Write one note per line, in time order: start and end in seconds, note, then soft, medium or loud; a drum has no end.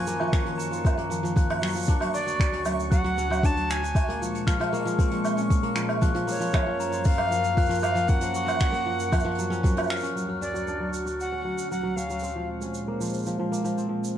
0.00 1.84 F#2 medium
0.00 1.86 D#3 medium
0.00 0.19 F3 loud
0.00 0.32 C#4 medium
0.00 0.68 F4 medium
0.00 1.85 A#4 medium
0.00 0.59 G#5 medium
0.00 10.17 C#6 medium
0.00 closed hi-hat soft
0.07 0.97 A#3 medium
0.07 closed hi-hat soft
0.07 shaker medium
0.12 closed hi-hat soft
0.16 closed hi-hat soft
0.20 0.45 F3 loud
0.20 closed hi-hat soft
0.20 low woodblock medium
0.27 closed hi-hat soft
0.33 1.94 C#4 medium
0.33 finger snap medium
0.33 kick loud
0.33 closed hi-hat medium
0.33 closed hi-hat soft
0.33 shaker medium
0.40 closed hi-hat soft
0.46 1.09 F3 medium
0.46 closed hi-hat medium
0.58 0.73 A#5 medium
0.58 shaker medium
0.71 1.68 F4 medium
0.71 shaker medium
0.85 kick loud
0.85 closed hi-hat medium
0.85 low woodblock medium
0.85 shaker medium
0.98 2.91 A#3 medium
0.98 closed hi-hat medium
1.10 1.22 F3 medium
1.10 shaker medium
1.23 1.34 F3 medium
1.23 shaker soft
1.36 1.74 F3 medium
1.36 1.61 F#6 medium
1.36 kick loud
1.36 closed hi-hat medium
1.36 shaker medium
1.50 closed hi-hat medium
1.50 low woodblock medium
1.62 1.93 F#3 medium
1.62 finger snap medium
1.62 shaker soft
1.67 shaker soft
1.70 shaker soft
1.73 1.93 F3 medium
1.73 closed hi-hat soft
1.73 shaker medium
1.76 shaker medium
1.79 shaker medium
1.82 shaker medium
1.85 3.93 D2 medium
1.85 3.93 F#4 medium
1.85 closed hi-hat medium
1.85 shaker medium
1.88 2.58 D4 medium
1.88 kick loud
1.88 shaker medium
2.00 2.64 F#3 medium
2.00 closed hi-hat medium
2.00 low woodblock medium
2.14 2.62 D5 loud
2.14 2.39 C#6 medium
2.14 shaker medium
2.26 3.73 F#4 medium
2.26 closed hi-hat soft
2.26 shaker medium
2.40 finger snap medium
2.40 kick loud
2.40 closed hi-hat medium
2.40 shaker medium
2.52 3.17 C#4 medium
2.52 closed hi-hat medium
2.65 2.90 F#3 medium
2.65 low woodblock medium
2.65 shaker loud
2.79 shaker soft
2.91 3.03 F#3 medium
2.91 3.47 F#5 loud
2.91 3.06 F#6 medium
2.91 kick loud
2.91 closed hi-hat medium
2.91 shaker medium
3.04 3.29 F#3 loud
3.04 closed hi-hat medium
3.18 3.49 C#4 loud
3.18 shaker medium
3.30 3.56 F#3 loud
3.30 low woodblock medium
3.30 shaker medium
3.43 5.11 D4 medium
3.43 3.72 A5 loud
3.43 kick loud
3.43 closed hi-hat medium
3.43 shaker medium
3.57 4.00 F#3 medium
3.57 closed hi-hat medium
3.70 4.22 G#5 loud
3.70 3.84 A5 medium
3.70 finger snap medium
3.70 shaker medium
3.83 4.28 F#4 medium
3.83 closed hi-hat medium
3.83 shaker soft
3.95 6.00 A#2 medium
3.95 6.00 G#3 medium
3.95 kick loud
3.95 closed hi-hat medium
3.95 low woodblock medium
3.95 shaker medium
4.08 4.72 A#3 medium
4.08 closed hi-hat medium
4.22 4.46 F3 medium
4.22 shaker medium
4.35 closed hi-hat medium
4.35 shaker soft
4.47 4.59 F3 medium
4.47 4.62 F6 loud
4.47 finger snap medium
4.47 kick loud
4.47 closed hi-hat medium
4.47 shaker medium
4.60 4.84 F3 loud
4.60 closed hi-hat medium
4.60 low woodblock medium
4.73 5.63 A#3 loud
4.73 shaker medium
4.85 5.11 F3 loud
4.85 shaker medium
4.99 5.43 C4 medium
4.99 kick loud
4.99 closed hi-hat medium
4.99 shaker medium
5.11 5.74 F3 medium
5.11 closed hi-hat medium
5.25 5.49 C#6 medium
5.25 low woodblock medium
5.25 shaker medium
5.37 6.52 C#4 medium
5.37 shaker medium
5.50 kick loud
5.50 closed hi-hat medium
5.50 shaker medium
5.63 6.27 A#3 medium
5.63 closed hi-hat medium
5.75 6.00 F3 medium
5.75 finger snap medium
5.75 shaker medium
5.89 closed hi-hat medium
5.89 low woodblock medium
6.01 10.12 F#2 medium
6.01 6.13 F3 medium
6.01 10.12 F3 medium
6.01 10.12 A#4 loud
6.01 6.17 F#6 medium
6.01 kick medium
6.01 closed hi-hat medium
6.01 shaker medium
6.15 6.39 F3 loud
6.15 closed hi-hat medium
6.27 7.18 A#3 medium
6.27 7.07 C#5 medium
6.27 shaker medium
6.32 shaker medium
6.34 shaker medium
6.37 6.65 F3 loud
6.37 shaker soft
6.41 closed hi-hat soft
6.41 shaker soft
6.41 shaker medium
6.44 shaker soft
6.47 shaker soft
6.51 8.07 C#4 medium
6.51 closed hi-hat medium
6.51 shaker soft
6.54 finger snap medium
6.54 kick loud
6.54 low woodblock medium
6.54 shaker medium
6.66 7.30 F3 medium
6.80 6.95 A#5 medium
6.80 closed hi-hat medium
6.80 shaker medium
6.92 8.43 F4 medium
6.92 shaker soft
7.04 7.82 F5 loud
7.04 kick loud
7.04 closed hi-hat medium
7.04 shaker medium
7.08 closed hi-hat medium
7.11 closed hi-hat medium
7.15 closed hi-hat soft
7.18 7.82 A#3 medium
7.18 closed hi-hat medium
7.18 low woodblock medium
7.22 closed hi-hat soft
7.25 closed hi-hat soft
7.31 7.56 F3 medium
7.31 shaker medium
7.44 shaker soft
7.57 7.68 F3 medium
7.57 7.72 F#6 loud
7.57 kick loud
7.57 closed hi-hat medium
7.57 shaker soft
7.61 shaker soft
7.66 7.94 F3 loud
7.66 shaker soft
7.70 closed hi-hat medium
7.70 shaker soft
7.75 shaker soft
7.79 8.72 A#3 loud
7.79 8.10 F5 loud
7.79 shaker medium
7.83 low woodblock medium
7.83 shaker medium
7.95 8.20 F3 loud
7.95 closed hi-hat medium
7.95 shaker medium
8.07 9.50 C#4 medium
8.07 9.64 F#5 loud
8.07 kick loud
8.07 closed hi-hat medium
8.07 shaker medium
8.21 8.85 F3 medium
8.21 closed hi-hat medium
8.21 shaker medium
8.34 8.60 C#6 medium
8.34 shaker loud
8.47 9.45 F4 medium
8.47 closed hi-hat medium
8.47 low woodblock medium
8.47 shaker soft
8.60 finger snap medium
8.60 kick loud
8.60 closed hi-hat medium
8.60 shaker medium
8.72 10.65 A#3 medium
8.72 closed hi-hat medium
8.86 9.11 F3 medium
9.00 closed hi-hat medium
9.00 shaker medium
9.12 9.24 F3 medium
9.12 9.27 F#6 medium
9.12 kick loud
9.12 closed hi-hat medium
9.12 low woodblock medium
9.12 shaker medium
9.19 shaker soft
9.25 9.76 F3 loud
9.25 closed hi-hat soft
9.31 closed hi-hat soft
9.35 9.62 F#3 medium
9.35 closed hi-hat soft
9.39 shaker medium
9.50 10.02 C#4 loud
9.50 closed hi-hat soft
9.50 shaker soft
9.63 10.14 F#3 medium
9.63 kick loud
9.63 closed hi-hat medium
9.63 shaker medium
9.77 10.21 F3 medium
9.77 closed hi-hat medium
9.77 low woodblock loud
9.77 shaker soft
9.83 shaker soft
9.87 10.15 F6 loud
9.87 finger snap medium
9.87 shaker soft
9.91 shaker medium
9.91 shaker soft
9.96 shaker soft
10.00 10.41 C#4 medium
10.00 closed hi-hat medium
10.00 shaker soft
10.04 shaker medium
10.15 12.21 D2 medium
10.15 10.27 F#3 medium
10.15 12.21 F#4 medium
10.15 shaker soft
10.28 10.53 F#3 medium
10.41 10.74 C#4 medium
10.41 10.90 D5 medium
10.41 shaker medium
10.54 10.79 F#3 medium
10.54 shaker soft
10.67 11.38 D4 medium
10.67 shaker soft
10.80 11.43 F#3 medium
10.94 shaker medium
11.06 12.42 F#4 medium
11.06 shaker soft
11.20 11.68 F#5 loud
11.20 shaker soft
11.32 11.96 C#4 medium
11.45 11.70 F#3 medium
11.58 shaker soft
11.58 shaker medium
11.71 11.82 F#3 medium
11.71 11.98 F#5 medium
11.71 shaker soft
11.83 12.09 F#3 medium
11.96 12.28 C#4 medium
11.96 12.48 F5 medium
11.96 shaker medium
12.10 12.28 F#3 medium
12.10 shaker soft
12.19 12.67 C4 medium
12.19 shaker soft
12.23 14.18 A#2 medium
12.23 14.18 G#3 medium
12.23 14.18 C5 medium
12.23 shaker medium
12.28 shaker soft
12.36 12.99 F3 medium
12.61 13.83 C#4 medium
12.61 shaker soft
12.74 shaker medium
12.88 13.51 A#3 medium
13.00 13.25 F3 medium
13.00 shaker medium
13.05 shaker medium
13.09 shaker soft
13.14 shaker soft
13.18 shaker soft
13.23 shaker soft
13.26 13.38 F3 medium
13.26 shaker soft
13.39 13.63 F3 medium
13.52 14.18 A#3 medium
13.52 shaker medium
13.64 13.88 F3 medium
13.64 shaker soft
13.77 14.18 C4 medium
13.77 shaker soft
13.89 14.18 F3 medium
14.04 shaker medium